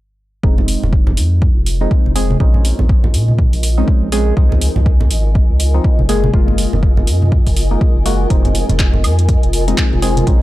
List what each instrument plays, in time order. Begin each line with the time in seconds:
0.43 analog synth bass F1, synth stab G#3 C4 D#4, ambient pad F4, kick
0.58 low conga
0.68 open hi-hat
0.77 ambient pad A#4
0.83 analog synth bass F1, low conga
0.93 kick
1.07 low conga
1.13 ambient pad D#5
1.17 analog synth bass F2, open hi-hat
1.34 ambient pad G#5
1.42 kick
1.56 analog synth bass F1
1.66 open hi-hat
1.81 synth stab G#3 C4 D#4
1.91 kick
2.06 analog synth bass F1, high conga
2.16 synth stab G#3 C4 G#4, open hi-hat
2.30 high conga
2.40 analog synth bass A#1, synth stab G#3 C4 C#4 D#4, kick
2.54 low conga
2.65 open hi-hat
2.79 analog synth bass A#1, low conga
2.89 kick
3.04 low conga
3.14 analog synth bass A#2, open hi-hat
3.28 high conga
3.39 kick
3.53 analog synth bass A#1, open hi-hat
3.63 open hi-hat
3.78 synth stab G#3 C4 C#4 D#4
3.88 kick
4.02 analog synth bass A#1
4.12 synth stab G#3 C4 C#4 G#4, open hi-hat
4.37 analog synth bass C#2, synth stab F3 C4 D#4, kick
4.52 low conga
4.61 open hi-hat
4.76 analog synth bass C#2, low conga
4.86 kick
5.01 low conga
5.11 analog synth bass G#1, open hi-hat
5.35 kick
5.50 analog synth bass C#2
5.60 open hi-hat
5.74 synth stab F3 C4 D#4
5.84 kick
5.99 analog synth bass F#1, high conga
6.09 synth stab G#3 A#3 G#4, open hi-hat
6.24 high conga
6.34 analog synth bass F#1, synth stab G#3 A#3 F4, kick
6.48 low conga
6.58 open hi-hat
6.73 analog synth bass F#1, low conga
6.83 kick
6.97 low conga
7.07 analog synth bass F#2, open hi-hat
7.22 high conga
7.32 kick
7.47 analog synth bass F#1, kick, open hi-hat
7.57 open hi-hat
7.71 synth stab G#3 A#3 D#4
7.81 kick
7.96 analog synth bass F#1
8.06 synth stab G#3 A#3 F#4, open hi-hat
8.30 analog synth bass F1, synth stab G#3 C4 D#4, kick, closed hi-hat
8.45 closed hi-hat, low conga
8.55 open hi-hat
8.69 analog synth bass F1, closed hi-hat, low conga
8.79 kick, clap, closed hi-hat
8.94 low conga
9.04 analog synth bass F2, open hi-hat, high woodblock
9.19 closed hi-hat
9.29 kick, closed hi-hat
9.43 analog synth bass F1, closed hi-hat
9.53 open hi-hat
9.68 synth stab G#3 C4 D#4, closed hi-hat
9.78 kick, clap, closed hi-hat
9.93 analog synth bass F1, high conga
10.02 synth stab G#3 C4 G#4, open hi-hat
10.17 closed hi-hat, high conga
10.27 analog synth bass A#1, synth stab G#3 C4 C#4 D#4, kick, closed hi-hat